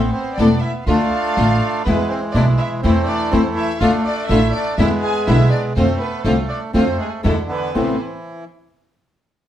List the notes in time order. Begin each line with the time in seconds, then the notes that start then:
Already playing: B3 C4
0.10 C4 C5
0.34 E1 D4 D5
0.38 C3 E3 A3 B3 C4 E4 A4
0.59 E4 E5
0.84 D2 D3 A3 D4 F4 F5
0.89 A3 D4 F4
1.36 A1 D3 A3 D4 F4
1.84 E2 B2 E3 G#3 B3 E4 B4
1.88 E3 G#3 B3 E4
2.09 C4 C5
2.33 B1 B2 E3 G#3 B3 D4 E4 D5
2.37 B3 E4
2.57 E4 E5
2.82 E2 E3 A3 C4 E4 C5
3.06 D4 D5
3.31 E2 E3 A3 C4 E4 C5
3.56 E4 E5
3.80 D2 D3 A3 D4 F4 F5
4.04 D4 D5
4.28 A1 D3 A3 D4 E4 F4 E5
4.53 D4 D5
4.78 E2 B2 D3 G#3 B3 D4 E4 E5
5.03 G#4 G#5
5.27 B1 B2 D3 G#3 B3 D4 E4 E5
5.51 D4 D5
5.76 F2 D3 A3 C4 D4 F4 C5
5.99 B3 B4
6.23 C2 D3 A3 C4 D4 F4 C5
6.48 D4 D5
6.73 F2 D3 A3 C4 D4 F4 C5
6.98 G#3 G#4
7.23 E2 B2 D3 G#3 A3 B3 D4 E4 A4
7.49 E3 B3 B4
7.74 A1 A2 C3 E3 A3 B3 C4 E4 A4 C5